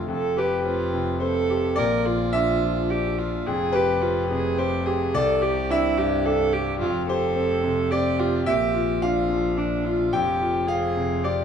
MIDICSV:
0, 0, Header, 1, 4, 480
1, 0, Start_track
1, 0, Tempo, 560224
1, 81, Time_signature, 3, 2, 24, 8
1, 4401, Tempo, 555556
1, 9851, End_track
2, 0, Start_track
2, 0, Title_t, "Viola"
2, 0, Program_c, 0, 41
2, 88, Note_on_c, 0, 69, 83
2, 328, Note_on_c, 0, 67, 78
2, 341, Note_off_c, 0, 69, 0
2, 558, Note_off_c, 0, 67, 0
2, 563, Note_on_c, 0, 65, 80
2, 1034, Note_off_c, 0, 65, 0
2, 1053, Note_on_c, 0, 69, 96
2, 1524, Note_on_c, 0, 70, 85
2, 1537, Note_off_c, 0, 69, 0
2, 1758, Note_on_c, 0, 65, 90
2, 1771, Note_off_c, 0, 70, 0
2, 2488, Note_on_c, 0, 67, 86
2, 2501, Note_off_c, 0, 65, 0
2, 2728, Note_on_c, 0, 65, 79
2, 2741, Note_off_c, 0, 67, 0
2, 2967, Note_on_c, 0, 68, 91
2, 2980, Note_off_c, 0, 65, 0
2, 3210, Note_on_c, 0, 67, 85
2, 3223, Note_off_c, 0, 68, 0
2, 3442, Note_on_c, 0, 65, 82
2, 3454, Note_off_c, 0, 67, 0
2, 3682, Note_off_c, 0, 65, 0
2, 3690, Note_on_c, 0, 68, 89
2, 3928, Note_on_c, 0, 67, 93
2, 3941, Note_off_c, 0, 68, 0
2, 4163, Note_on_c, 0, 68, 81
2, 4176, Note_off_c, 0, 67, 0
2, 4408, Note_on_c, 0, 69, 93
2, 4421, Note_off_c, 0, 68, 0
2, 4648, Note_on_c, 0, 67, 91
2, 4660, Note_off_c, 0, 69, 0
2, 4892, Note_on_c, 0, 64, 92
2, 4905, Note_off_c, 0, 67, 0
2, 5127, Note_on_c, 0, 67, 87
2, 5140, Note_off_c, 0, 64, 0
2, 5368, Note_on_c, 0, 69, 102
2, 5381, Note_off_c, 0, 67, 0
2, 5606, Note_on_c, 0, 67, 88
2, 5619, Note_off_c, 0, 69, 0
2, 5838, Note_off_c, 0, 67, 0
2, 5843, Note_on_c, 0, 65, 84
2, 6076, Note_off_c, 0, 65, 0
2, 6085, Note_on_c, 0, 69, 95
2, 6796, Note_on_c, 0, 67, 91
2, 6809, Note_off_c, 0, 69, 0
2, 7041, Note_on_c, 0, 65, 84
2, 7054, Note_off_c, 0, 67, 0
2, 7278, Note_off_c, 0, 65, 0
2, 7285, Note_on_c, 0, 67, 87
2, 7759, Note_on_c, 0, 65, 83
2, 7772, Note_off_c, 0, 67, 0
2, 8239, Note_on_c, 0, 62, 76
2, 8252, Note_off_c, 0, 65, 0
2, 8473, Note_on_c, 0, 65, 77
2, 8486, Note_off_c, 0, 62, 0
2, 8713, Note_on_c, 0, 67, 85
2, 8726, Note_off_c, 0, 65, 0
2, 9182, Note_on_c, 0, 68, 83
2, 9195, Note_off_c, 0, 67, 0
2, 9669, Note_on_c, 0, 67, 75
2, 9682, Note_off_c, 0, 68, 0
2, 9851, Note_off_c, 0, 67, 0
2, 9851, End_track
3, 0, Start_track
3, 0, Title_t, "Grand piano"
3, 0, Program_c, 1, 0
3, 0, Control_c, 1, 64, 127
3, 0, Note_on_c, 1, 41, 66
3, 0, Note_on_c, 1, 48, 45
3, 0, Note_on_c, 1, 50, 42
3, 0, Note_on_c, 1, 57, 42
3, 0, Note_on_c, 1, 69, 77
3, 71, Note_off_c, 1, 41, 0
3, 71, Note_on_c, 1, 41, 71
3, 100, Control_c, 1, 64, 0
3, 101, Note_off_c, 1, 48, 0
3, 101, Note_off_c, 1, 50, 0
3, 101, Note_off_c, 1, 57, 0
3, 108, Note_off_c, 1, 69, 0
3, 260, Control_c, 1, 64, 127
3, 314, Note_on_c, 1, 67, 66
3, 327, Note_on_c, 1, 71, 93
3, 560, Note_on_c, 1, 60, 64
3, 706, Note_off_c, 1, 67, 0
3, 803, Note_on_c, 1, 48, 57
3, 947, Note_off_c, 1, 60, 0
3, 1012, Note_off_c, 1, 71, 0
3, 1029, Note_on_c, 1, 72, 84
3, 1048, Note_on_c, 1, 60, 56
3, 1186, Note_off_c, 1, 48, 0
3, 1282, Note_on_c, 1, 67, 60
3, 1430, Note_off_c, 1, 60, 0
3, 1483, Note_off_c, 1, 72, 0
3, 1486, Note_off_c, 1, 41, 0
3, 1505, Note_on_c, 1, 74, 109
3, 1523, Note_on_c, 1, 46, 78
3, 1524, Note_off_c, 1, 67, 0
3, 1541, Control_c, 1, 64, 0
3, 1698, Control_c, 1, 64, 127
3, 1772, Note_on_c, 1, 65, 60
3, 1962, Note_off_c, 1, 74, 0
3, 1993, Note_on_c, 1, 76, 115
3, 2005, Note_on_c, 1, 62, 66
3, 2154, Note_off_c, 1, 65, 0
3, 2243, Note_on_c, 1, 53, 62
3, 2390, Note_off_c, 1, 62, 0
3, 2488, Note_on_c, 1, 62, 59
3, 2628, Note_off_c, 1, 53, 0
3, 2684, Note_off_c, 1, 76, 0
3, 2735, Note_on_c, 1, 65, 63
3, 2869, Note_off_c, 1, 62, 0
3, 2928, Note_off_c, 1, 46, 0
3, 2969, Note_off_c, 1, 65, 0
3, 2971, Note_on_c, 1, 41, 81
3, 2979, Control_c, 1, 64, 0
3, 3119, Control_c, 1, 64, 127
3, 3191, Note_on_c, 1, 71, 99
3, 3203, Note_on_c, 1, 67, 69
3, 3444, Note_on_c, 1, 60, 68
3, 3587, Note_off_c, 1, 67, 0
3, 3692, Note_on_c, 1, 48, 64
3, 3828, Note_off_c, 1, 60, 0
3, 3883, Note_off_c, 1, 71, 0
3, 3926, Note_on_c, 1, 60, 62
3, 3927, Note_on_c, 1, 72, 94
3, 4071, Note_off_c, 1, 48, 0
3, 4169, Note_on_c, 1, 67, 68
3, 4307, Note_off_c, 1, 60, 0
3, 4370, Note_off_c, 1, 72, 0
3, 4371, Note_off_c, 1, 41, 0
3, 4405, Note_off_c, 1, 67, 0
3, 4405, Note_on_c, 1, 36, 81
3, 4408, Note_on_c, 1, 74, 120
3, 4418, Control_c, 1, 64, 0
3, 4548, Control_c, 1, 64, 127
3, 4640, Note_on_c, 1, 67, 68
3, 4852, Note_off_c, 1, 74, 0
3, 4890, Note_on_c, 1, 62, 75
3, 4899, Note_on_c, 1, 76, 113
3, 5025, Note_off_c, 1, 67, 0
3, 5127, Note_on_c, 1, 43, 67
3, 5270, Note_off_c, 1, 62, 0
3, 5377, Note_on_c, 1, 62, 66
3, 5507, Note_off_c, 1, 43, 0
3, 5574, Note_off_c, 1, 76, 0
3, 5604, Note_on_c, 1, 67, 64
3, 5751, Note_off_c, 1, 62, 0
3, 5807, Note_off_c, 1, 36, 0
3, 5841, Note_off_c, 1, 67, 0
3, 5849, Note_on_c, 1, 41, 83
3, 5857, Control_c, 1, 64, 0
3, 6011, Control_c, 1, 64, 127
3, 6085, Note_on_c, 1, 67, 68
3, 6092, Note_on_c, 1, 72, 104
3, 6319, Note_on_c, 1, 60, 68
3, 6464, Note_off_c, 1, 67, 0
3, 6561, Note_on_c, 1, 48, 67
3, 6700, Note_off_c, 1, 60, 0
3, 6768, Note_off_c, 1, 72, 0
3, 6804, Note_on_c, 1, 74, 104
3, 6805, Note_on_c, 1, 60, 67
3, 6941, Note_off_c, 1, 48, 0
3, 7037, Note_on_c, 1, 67, 70
3, 7183, Note_off_c, 1, 60, 0
3, 7245, Note_off_c, 1, 41, 0
3, 7245, Note_off_c, 1, 74, 0
3, 7275, Note_off_c, 1, 67, 0
3, 7275, Note_on_c, 1, 76, 116
3, 7276, Note_on_c, 1, 46, 80
3, 7292, Control_c, 1, 64, 0
3, 7424, Control_c, 1, 64, 127
3, 7512, Note_on_c, 1, 65, 69
3, 7719, Note_off_c, 1, 76, 0
3, 7757, Note_on_c, 1, 77, 109
3, 7764, Note_on_c, 1, 62, 60
3, 7893, Note_off_c, 1, 65, 0
3, 7996, Note_on_c, 1, 53, 61
3, 8139, Note_off_c, 1, 62, 0
3, 8236, Note_on_c, 1, 62, 60
3, 8375, Note_off_c, 1, 53, 0
3, 8436, Note_off_c, 1, 77, 0
3, 8485, Note_on_c, 1, 65, 59
3, 8615, Note_off_c, 1, 62, 0
3, 8672, Note_off_c, 1, 46, 0
3, 8713, Note_on_c, 1, 79, 102
3, 8715, Note_off_c, 1, 65, 0
3, 8721, Note_on_c, 1, 41, 74
3, 8724, Control_c, 1, 64, 0
3, 8869, Control_c, 1, 64, 127
3, 8955, Note_on_c, 1, 65, 63
3, 9154, Note_off_c, 1, 79, 0
3, 9189, Note_on_c, 1, 60, 58
3, 9193, Note_on_c, 1, 77, 104
3, 9334, Note_off_c, 1, 65, 0
3, 9438, Note_on_c, 1, 48, 54
3, 9576, Note_off_c, 1, 60, 0
3, 9643, Note_off_c, 1, 77, 0
3, 9677, Note_on_c, 1, 74, 92
3, 9683, Note_on_c, 1, 60, 53
3, 9828, Note_off_c, 1, 48, 0
3, 9851, Note_off_c, 1, 41, 0
3, 9851, Note_off_c, 1, 60, 0
3, 9851, Note_off_c, 1, 74, 0
3, 9851, End_track
4, 0, Start_track
4, 0, Title_t, "Double bass"
4, 0, Program_c, 2, 43
4, 84, Note_on_c, 2, 29, 80
4, 1526, Note_on_c, 2, 34, 84
4, 1539, Note_off_c, 2, 29, 0
4, 2958, Note_on_c, 2, 29, 92
4, 2971, Note_off_c, 2, 34, 0
4, 4411, Note_on_c, 2, 36, 92
4, 4424, Note_off_c, 2, 29, 0
4, 5850, Note_on_c, 2, 29, 85
4, 5863, Note_off_c, 2, 36, 0
4, 7280, Note_on_c, 2, 34, 89
4, 7293, Note_off_c, 2, 29, 0
4, 8709, Note_on_c, 2, 29, 83
4, 8722, Note_off_c, 2, 34, 0
4, 9851, Note_off_c, 2, 29, 0
4, 9851, End_track
0, 0, End_of_file